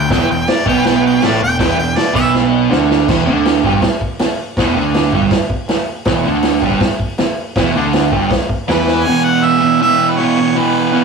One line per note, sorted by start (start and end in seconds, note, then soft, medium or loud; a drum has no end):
0.00 0.11 G5 loud
0.10 0.28 E1 loud
0.10 0.29 E2 medium
0.10 0.29 E3 loud
0.10 0.29 G5 loud
0.10 kick loud
0.10 snare loud
0.10 crash medium
0.29 0.47 E1 medium
0.29 0.45 E2 medium
0.29 0.51 G5 medium
0.48 0.67 D5 loud
0.48 snare loud
0.48 crash medium
0.66 1.18 B1 loud
0.66 1.20 B2 medium
0.66 1.21 B3 loud
0.66 0.85 G5 loud
0.66 kick loud
0.84 1.04 G5 medium
0.84 snare loud
0.84 crash medium
1.06 1.26 G5 medium
1.21 1.40 A1 medium
1.21 1.40 A2 loud
1.21 1.40 A3 loud
1.21 snare loud
1.21 crash medium
1.25 1.42 D5 loud
1.41 1.58 E1 medium
1.41 1.56 E2 medium
1.41 1.59 G5 loud
1.59 1.77 E1 loud
1.59 1.76 E2 loud
1.59 1.77 E3 loud
1.59 1.78 G5 loud
1.59 kick loud
1.59 snare loud
1.59 crash medium
1.77 1.95 E1 medium
1.77 1.93 E2 medium
1.77 1.97 G5 loud
1.96 2.14 D5 medium
1.96 snare loud
1.96 crash medium
2.13 2.67 B1 loud
2.13 2.70 B2 loud
2.13 2.70 B3 loud
2.13 2.33 E5 loud
2.13 kick loud
2.35 snare medium
2.70 3.06 D2 medium
2.70 3.08 D3 loud
2.70 3.08 D4 loud
2.70 snare medium
2.91 snare loud
3.08 3.26 E1 medium
3.08 3.27 E2 loud
3.08 3.27 E3 loud
3.08 kick loud
3.08 snare loud
3.08 crash loud
3.25 3.61 D2 medium
3.25 3.63 D3 medium
3.25 3.63 D4 loud
3.45 snare loud
3.45 open hi-hat medium
3.63 3.82 G1 medium
3.63 3.82 G2 loud
3.63 3.83 G3 medium
3.63 kick medium
3.73 kick medium
3.82 kick loud
3.82 snare loud
3.82 open hi-hat medium
4.01 kick medium
4.19 muted picked electric bass stroke soft
4.19 muted distorted electric guitar stroke medium
4.19 snare loud
4.19 open hi-hat medium
4.57 4.74 E1 loud
4.57 4.76 E2 medium
4.57 4.77 E3 loud
4.57 kick loud
4.57 snare loud
4.57 open hi-hat medium
4.75 5.10 D2 medium
4.75 5.13 D3 medium
4.75 5.13 D4 loud
4.94 snare loud
4.94 open hi-hat medium
5.12 5.30 G1 loud
5.12 5.31 G2 medium
5.12 5.32 G3 medium
5.12 kick medium
5.22 kick medium
5.31 kick loud
5.31 snare loud
5.31 open hi-hat medium
5.50 kick medium
5.68 muted picked electric bass stroke soft
5.68 muted distorted electric guitar stroke medium
5.68 snare loud
5.68 open hi-hat medium
6.05 6.24 E1 loud
6.05 6.25 E2 loud
6.05 6.26 E3 loud
6.05 kick loud
6.05 snare loud
6.05 open hi-hat medium
6.24 6.60 D2 medium
6.24 6.63 D3 medium
6.24 6.63 D4 loud
6.42 snare loud
6.42 open hi-hat medium
6.62 6.80 G1 medium
6.62 6.81 G2 medium
6.62 6.81 G3 loud
6.62 kick medium
6.71 kick medium
6.80 kick loud
6.80 snare loud
6.80 open hi-hat medium
7.00 kick medium
7.18 muted picked electric bass stroke soft
7.18 muted distorted electric guitar stroke medium
7.18 snare loud
7.18 open hi-hat medium
7.55 7.73 E1 loud
7.55 7.75 E2 medium
7.55 7.75 E3 loud
7.55 kick loud
7.55 snare loud
7.55 open hi-hat medium
7.74 8.09 D2 medium
7.74 8.12 D3 medium
7.74 8.13 D4 loud
7.93 snare loud
7.93 open hi-hat medium
8.12 8.30 G1 loud
8.12 8.30 G2 medium
8.12 8.30 G3 loud
8.12 kick medium
8.31 kick loud
8.31 snare loud
8.31 open hi-hat medium
8.49 kick medium
8.68 9.03 E2 medium
8.68 9.05 E3 medium
8.68 9.05 E4 loud
8.68 9.05 B4 loud
8.68 snare loud
8.68 open hi-hat medium
8.87 snare medium
9.04 9.42 E2 loud
9.04 9.43 B2 loud
9.04 9.43 E3 loud
9.04 9.26 G#5 loud
9.24 9.46 F#5 loud
9.42 9.61 E2 medium
9.42 9.61 B2 medium
9.42 9.62 E3 medium
9.42 9.81 E5 loud
9.61 9.79 E2 medium
9.61 9.80 B2 loud
9.61 9.80 E3 medium
9.80 10.17 E2 loud
9.80 10.18 B2 loud
9.80 10.18 E3 loud
9.80 10.11 E5 loud
10.10 10.19 B4 medium
10.18 10.36 E2 medium
10.18 10.37 B2 medium
10.18 10.38 E3 medium
10.18 10.59 C#5 medium
10.38 10.54 E2 loud
10.38 10.54 B2 medium
10.38 10.55 E3 medium
10.55 10.91 E2 loud
10.55 10.92 B2 loud
10.55 10.92 E3 loud
10.55 11.04 B4 medium
10.92 11.04 E2 medium
10.92 11.04 B2 medium
10.92 11.04 E3 loud